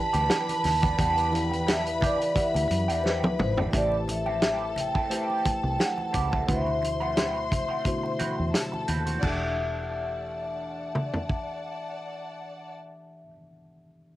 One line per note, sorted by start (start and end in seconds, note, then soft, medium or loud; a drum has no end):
0.00 0.98 E3 medium
0.00 0.99 E4 medium
0.00 0.99 G4 medium
0.00 3.69 B4 medium
0.00 1.00 D5 medium
0.00 1.01 F#5 medium
0.00 0.71 G5 medium
0.00 0.66 A5 loud
0.00 3.69 B5 medium
0.13 0.27 D2 loud
0.13 0.28 B3 medium
0.13 0.29 D4 medium
0.13 0.29 G4 medium
0.13 closed hi-hat medium
0.29 0.51 B3 medium
0.29 0.52 D4 medium
0.29 0.52 G4 medium
0.29 snare loud
0.29 closed hi-hat loud
0.29 muted conga soft
0.49 closed hi-hat medium
0.49 high conga medium
0.64 0.92 D#2 medium
0.64 1.36 A5 loud
0.64 muted clean electric guitar stroke soft
0.64 snare soft
0.64 open hi-hat medium
0.64 low conga medium
0.82 0.97 B3 soft
0.82 0.98 D4 medium
0.82 0.97 G4 medium
0.82 kick loud
0.82 closed hi-hat medium
0.82 high conga medium
0.98 2.16 E2 loud
0.98 1.26 E3 medium
0.98 1.30 B3 medium
0.98 1.30 D4 medium
0.98 1.26 E4 medium
0.98 1.27 G4 medium
0.98 1.31 G4 medium
0.98 1.27 D5 medium
0.98 1.27 F#5 medium
0.98 kick loud
0.98 closed hi-hat medium
0.98 low conga medium
1.17 closed hi-hat soft
1.31 2.14 E3 medium
1.31 2.14 E4 medium
1.31 2.15 G4 medium
1.31 2.15 D5 medium
1.31 1.40 F5 medium
1.31 closed hi-hat medium
1.31 high conga medium
1.37 1.67 G5 medium
1.37 2.19 G5 medium
1.51 muted clean electric guitar stroke soft
1.51 closed hi-hat soft
1.51 high conga medium
1.67 1.89 B3 medium
1.67 1.85 D4 medium
1.67 1.85 A4 medium
1.67 2.04 E5 loud
1.67 snare loud
1.67 closed hi-hat loud
1.86 muted clean electric guitar stroke soft
1.86 closed hi-hat soft
2.01 2.19 B3 medium
2.01 2.19 D4 medium
2.01 2.19 G4 medium
2.01 kick loud
2.01 closed hi-hat medium
2.01 high conga medium
2.01 low conga medium
2.06 2.13 D5 medium
2.20 muted clean electric guitar stroke soft
2.20 closed hi-hat soft
2.24 2.30 D5 medium
2.34 3.43 E3 medium
2.34 3.44 E4 medium
2.34 3.44 G4 medium
2.34 3.44 D5 medium
2.34 3.45 F#5 medium
2.34 muted clean electric guitar stroke soft
2.34 kick medium
2.34 closed hi-hat medium
2.34 muted conga soft
2.40 3.37 E5 medium
2.54 2.67 D2 medium
2.54 muted clean electric guitar stroke soft
2.54 closed hi-hat medium
2.54 muted conga soft
2.70 2.89 F#2 medium
2.70 closed hi-hat medium
2.70 high conga medium
2.88 3.24 E2 loud
2.88 3.03 B3 medium
2.88 3.04 D4 medium
2.88 3.05 G4 medium
2.88 closed hi-hat medium
3.01 3.26 B3 medium
3.01 3.26 D4 medium
3.01 3.06 C5 medium
3.01 muted conga soft
3.06 3.27 G4 medium
3.06 3.41 B4 medium
3.06 snare medium
3.23 3.36 D2 medium
3.23 high tom medium
3.23 high conga medium
3.39 3.67 G#1 loud
3.39 3.54 C5 medium
3.39 muted clean electric guitar stroke soft
3.39 mid tom loud
3.39 low conga medium
3.57 3.73 B3 soft
3.57 3.73 D4 soft
3.57 3.72 G4 medium
3.57 floor tom medium
3.57 high conga medium
3.71 4.91 A1 loud
3.71 4.81 A3 medium
3.71 3.95 C4 medium
3.71 4.81 E4 medium
3.71 3.95 E4 medium
3.71 4.82 G4 medium
3.71 6.44 A4 medium
3.71 4.82 B4 medium
3.71 4.82 C5 medium
3.71 3.75 E5 medium
3.71 6.44 A5 medium
3.71 kick loud
3.71 closed hi-hat medium
3.71 low conga medium
3.75 3.96 G4 medium
3.75 3.91 D5 loud
3.92 muted conga soft
4.08 4.80 E5 medium
4.08 muted clean electric guitar stroke soft
4.08 closed hi-hat medium
4.08 high conga medium
4.26 4.41 C4 soft
4.26 4.41 E4 medium
4.26 4.41 G4 medium
4.26 high conga medium
4.42 4.64 C4 medium
4.42 4.64 E4 medium
4.42 4.65 G4 medium
4.42 snare loud
4.42 closed hi-hat medium
4.61 muted conga soft
4.76 muted clean electric guitar stroke soft
4.76 closed hi-hat medium
4.76 high conga medium
4.76 low conga medium
4.80 5.13 G5 loud
4.95 5.09 C4 soft
4.95 5.10 E4 medium
4.95 5.10 A4 medium
4.95 kick medium
5.10 6.19 A3 medium
5.10 5.42 C4 medium
5.10 6.19 E4 medium
5.10 5.43 E4 medium
5.10 6.20 G4 medium
5.10 5.43 G4 medium
5.10 6.20 B4 medium
5.10 6.20 C5 medium
5.10 closed hi-hat medium
5.10 muted conga soft
5.14 5.83 G5 loud
5.30 muted conga soft
5.45 muted fingered electric bass stroke soft
5.45 muted clean electric guitar stroke soft
5.45 kick medium
5.45 closed hi-hat medium
5.45 high conga medium
5.63 5.76 C2 medium
5.63 muted clean electric guitar stroke soft
5.79 muted clean electric guitar stroke soft
5.79 snare loud
5.79 closed hi-hat medium
5.79 muted conga soft
5.84 6.47 F#5 medium
5.97 muted clean electric guitar stroke soft
5.97 muted conga soft
5.97 high conga medium
6.13 6.42 C#2 loud
6.13 6.31 C4 medium
6.13 6.31 E4 medium
6.13 6.31 G4 medium
6.13 kick medium
6.13 closed hi-hat medium
6.13 low conga medium
6.32 6.46 C4 medium
6.32 6.47 E4 soft
6.32 6.47 A4 medium
6.32 kick medium
6.32 high conga medium
6.47 7.66 D2 medium
6.47 7.57 B2 medium
6.47 7.56 D3 medium
6.47 7.57 A3 medium
6.47 6.69 C4 medium
6.47 7.57 E4 medium
6.47 6.70 F#4 medium
6.47 7.58 F#4 medium
6.47 6.70 B4 medium
6.47 6.56 B4 medium
6.47 8.50 C5 medium
6.47 8.50 C6 medium
6.47 kick loud
6.47 closed hi-hat medium
6.47 muted conga soft
6.47 low conga medium
6.52 8.53 E5 medium
6.56 7.61 C5 medium
6.67 muted conga soft
6.82 muted clean electric guitar stroke soft
6.82 closed hi-hat medium
6.82 high conga medium
7.00 7.15 C4 medium
7.00 7.16 F#4 medium
7.00 7.16 B4 medium
7.00 high conga medium
7.16 7.38 C4 medium
7.16 7.39 F#4 medium
7.16 7.39 B4 medium
7.16 snare loud
7.16 closed hi-hat medium
7.16 muted conga soft
7.51 muted clean electric guitar stroke soft
7.51 kick medium
7.51 closed hi-hat medium
7.51 high conga medium
7.51 low conga medium
7.69 7.85 C4 medium
7.69 7.85 F#4 medium
7.69 7.84 C5 medium
7.85 8.95 B2 medium
7.85 8.94 D3 medium
7.85 8.94 A3 medium
7.85 8.95 E4 medium
7.85 8.95 F#4 medium
7.85 8.95 C5 medium
7.85 kick medium
7.85 closed hi-hat medium
8.03 muted clean electric guitar stroke medium
8.03 muted conga soft
8.19 8.41 C4 medium
8.19 8.38 F#4 medium
8.19 8.36 B4 medium
8.19 muted fingered electric bass stroke soft
8.19 closed hi-hat medium
8.19 high conga medium
8.38 8.52 E2 medium
8.38 muted clean electric guitar stroke soft
8.53 9.22 A4 medium
8.53 9.22 A5 medium
8.53 muted clean electric guitar stroke soft
8.53 snare loud
8.53 closed hi-hat loud
8.53 muted conga soft
8.72 muted clean electric guitar stroke soft
8.72 muted conga soft
8.72 high conga medium
8.88 9.17 D#2 medium
8.88 9.06 C4 medium
8.88 9.06 F#4 medium
8.88 9.06 B4 medium
8.88 closed hi-hat medium
8.88 low conga medium
9.06 9.23 C4 soft
9.06 9.22 F#4 soft
9.06 9.22 C5 medium
9.06 closed hi-hat medium
9.06 high conga medium
9.17 13.22 E3 medium
9.17 13.25 D4 medium
9.21 13.28 E1 medium
9.21 13.30 A3 medium
9.21 13.33 D4 medium
9.21 13.28 G4 medium
9.21 12.74 D5 medium
9.21 12.74 F#5 medium
9.21 12.75 A5 medium
9.21 kick loud
9.21 crash medium
9.21 high conga medium
9.26 13.35 G4 medium
9.26 13.31 A4 medium
9.26 13.31 E5 medium
9.26 13.34 F#5 medium
10.95 mid tom medium
11.14 floor tom medium
11.29 kick medium